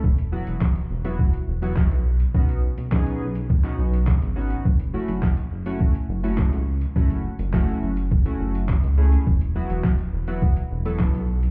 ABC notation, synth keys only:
X:1
M:4/4
L:1/16
Q:1/4=104
K:F#dor
V:1 name="Synth keys"
z2 [F,B,EF]2 z3 [F,B,EF]2 z2 [F,B,EF]2 z3 | [B,CDF]2 z2 [B,CDG]2 z3 [B,CDF]2 z3 [B,CDF]2 | z2 [A,CEF]2 z3 [A,CEF]2 z2 [A,CEF]2 z3 | [A,CEF]2 z2 [A,CEF]2 z3 [A,CEF]2 z3 [A,CEG]2 |
z2 [F,B,EF]2 z3 [F,B,EF]2 z2 [F,B,EA]2 z3 |]